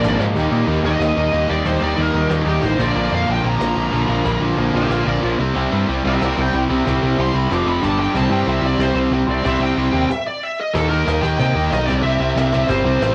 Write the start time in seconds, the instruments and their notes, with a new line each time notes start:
Already playing: overdriven electric guitar A#2 F3 G#3 D4, lead electric guitar D5
0.03 picked electric bass G#1, distorted electric guitar A#2 F3 A#3, cajon slap
0.18 picked electric bass G#2, distorted electric guitar A#2 F3 A#3, overdriven electric guitar G#3 D4, cajon slap
0.35 picked electric bass D#2, distorted electric guitar D#3 A#3 D#4, overdriven electric guitar G3 G4, cajon bass
0.52 picked electric bass A#2, distorted electric guitar D#3 A#3 D#4
0.67 picked electric bass D#2, distorted electric guitar D#3 A#3 D#4
0.83 picked electric bass D#2, distorted electric guitar D#3 A#3 D#4, lead electric guitar D#5
0.99 picked electric bass D#2, distorted electric guitar D#3 A#3 D#4, cajon slap
1.17 picked electric bass D#2, distorted electric guitar D#3 A#3 D#4
1.33 picked electric bass D#2, distorted electric guitar D#3 A#3 D#4
1.48 picked electric bass D#2, distorted electric guitar D#3 A#3 D#4, overdriven electric guitar G3 G4, lead electric guitar D5
1.64 picked electric bass D#2, distorted electric guitar D#3 A#3 D#4, overdriven electric guitar G3 G4, lead electric guitar C5, cajon bass
1.81 picked electric bass D#2, distorted electric guitar D#3 A#3 D#4, lead electric guitar D5
1.96 picked electric bass D#2, distorted electric guitar D#3 A#3 D#4
2.01 lead electric guitar A#4
2.13 picked electric bass D#2, distorted electric guitar D#3 A#3 D#4
2.30 picked electric bass D#2, distorted electric guitar D#3 A#3 D#4, cajon slap
2.46 picked electric bass D#2, distorted electric guitar D#3 A#3 D#4, lead electric guitar G4
2.62 picked electric bass A1, distorted electric guitar D#3 A#3 D#4, cajon bass
2.66 lead electric guitar C5
2.78 picked electric bass A#1, distorted electric guitar A#2 F3 A#3, overdriven electric guitar D3 F4, cajon bass
2.83 lead electric guitar D5
2.95 picked electric bass A#1, distorted electric guitar A#2 F3 A#3
3.12 picked electric bass F2, distorted electric guitar A#2 F3 A#3, lead electric guitar F5
3.27 picked electric bass A#1, distorted electric guitar A#2 F3 A#3
3.31 lead electric guitar G5
3.43 picked electric bass A#1, distorted electric guitar A#2 F3 A#3, lead electric guitar A#5
3.59 picked electric bass A#1, distorted electric guitar A#2 F3 A#3, cajon slap
3.76 picked electric bass A#1, distorted electric guitar A#2 F3 A#3
3.91 picked electric bass A#1, distorted electric guitar A#2 F3 A#3, overdriven electric guitar D3 F4
4.08 picked electric bass A#1, distorted electric guitar A#2 F3 A#3, overdriven electric guitar D3 F4
4.24 picked electric bass A#1, distorted electric guitar A#2 F3 A#3, cajon bass
4.41 picked electric bass A#1, distorted electric guitar A#2 F3 A#3
4.56 picked electric bass A#1, distorted electric guitar A#2 F3 A#3
4.73 picked electric bass A#1, distorted electric guitar A#2 F3 A#3
4.77 lead electric guitar G4 E5
4.89 picked electric bass A#1, distorted electric guitar A#2 F3 A#3, lead electric guitar F4 D5, cajon slap
5.05 picked electric bass A#1, distorted electric guitar A#2 F3 A#3, lead electric guitar D5
5.21 picked electric bass A#1, distorted electric guitar A#2 F3 A#3, overdriven electric guitar D3 F4
5.38 picked electric bass C2, distorted electric guitar C3 G3 C4
5.55 picked electric bass C2, distorted electric guitar C3 G3 C4, overdriven electric guitar E4
5.71 picked electric bass G2, distorted electric guitar C3 G3 C4
5.88 picked electric bass C2, distorted electric guitar C3 G3 C4
6.05 picked electric bass C2, distorted electric guitar C3 G3 C4, lead electric guitar G4
6.09 lead electric guitar E5
6.21 picked electric bass C2, distorted electric guitar C3 G3 C4, lead electric guitar A#4 D5, cajon slap
6.37 picked electric bass C2, distorted electric guitar C3 G3 C4
6.42 lead electric guitar G5
6.54 picked electric bass C2, distorted electric guitar C3 G3 C4
6.69 picked electric bass C2, distorted electric guitar C3 G3 C4, overdriven electric guitar E4
6.86 picked electric bass C2, distorted electric guitar C3 G3 C4, overdriven electric guitar E4, cajon bass
7.02 picked electric bass C2, distorted electric guitar C3 G3 C4
7.17 picked electric bass C2, distorted electric guitar C3 G3 C4, lead electric guitar C6
7.34 picked electric bass C2, distorted electric guitar C3 G3 C4, lead electric guitar B5
7.50 picked electric bass F1, distorted electric guitar F2 C3 F3, overdriven electric guitar C4 F4 C5, lead electric guitar D6, cajon slap
7.66 picked electric bass F1, distorted electric guitar F2 C3 F3, lead electric guitar B5
7.81 picked electric bass G1, distorted electric guitar G2 D3 G3, overdriven electric guitar D4 G4, lead electric guitar A5, cajon bass
7.85 overdriven electric guitar D5
7.98 distorted electric guitar G2 D3 G3, lead electric guitar G5
8.14 picked electric bass C2, distorted electric guitar C3 G3 C4, overdriven electric guitar E4 G4 C5, lead electric guitar A5, cajon bass
8.30 picked electric bass G2, distorted electric guitar C3 G3 C4, lead electric guitar G5
8.46 picked electric bass C2, distorted electric guitar C3 G3 C4, lead electric guitar E5
8.62 picked electric bass C2, distorted electric guitar C3 G3 C4, lead electric guitar D5
8.78 picked electric bass C2, distorted electric guitar C3 G3 C4, lead electric guitar C5, cajon slap
8.94 picked electric bass C2, distorted electric guitar C3 G3 C4
9.11 picked electric bass C2, distorted electric guitar C3 G3 C4
9.27 picked electric bass C2, distorted electric guitar C3 G3 C4, overdriven electric guitar E4 G4 C5, lead electric guitar D5
9.43 picked electric bass C2, distorted electric guitar C3 G3 C4, overdriven electric guitar E4 G4 C5, cajon bass
9.48 lead electric guitar E5
9.59 picked electric bass C2, distorted electric guitar C3 G3 C4, lead electric guitar G5
9.76 picked electric bass C2, distorted electric guitar C3 G3 C4
9.92 picked electric bass D#2, distorted electric guitar C3 G3 C4
10.10 lead electric guitar E5, cajon bass, cajon slap
10.27 lead electric guitar D5
10.43 lead electric guitar E5
10.60 lead electric guitar D#5
10.73 picked electric bass D#2, distorted electric guitar D#3 A#3 D#4, lead electric guitar A4, cajon bass
10.89 distorted electric guitar D#3 A#3 D#4, lead electric guitar A#4
11.06 picked electric bass D#2, distorted electric guitar D#3 A#3 D#4, cajon slap
11.21 picked electric bass D#2, distorted electric guitar D#3 A#3 D#4, lead electric guitar G5, cajon bass
11.38 picked electric bass C3, distorted electric guitar D#3 A#3 D#4, lead electric guitar G5, cajon bass
11.55 picked electric bass D#2, distorted electric guitar D#3 A#3 D#4
11.70 picked electric bass B1, distorted electric guitar D#3 A#3 D#4, lead electric guitar D#5, cajon slap
11.86 picked electric bass C2, distorted electric guitar C3 G3 C4, lead electric guitar D5, cajon bass
12.02 picked electric bass C2, distorted electric guitar C3 G3 C4, lead electric guitar E5
12.19 picked electric bass C2, distorted electric guitar C3 G3 C4
12.36 picked electric bass C2, distorted electric guitar C3 G3 C4, cajon slap
12.53 distorted electric guitar C3 G3 C4, cajon bass
12.68 picked electric bass G1, distorted electric guitar C3 G3 C4, lead electric guitar C5, cajon bass
12.84 picked electric bass C2, distorted electric guitar C3 G3 C4
13.00 picked electric bass A1, distorted electric guitar C3 G3 C4, cajon slap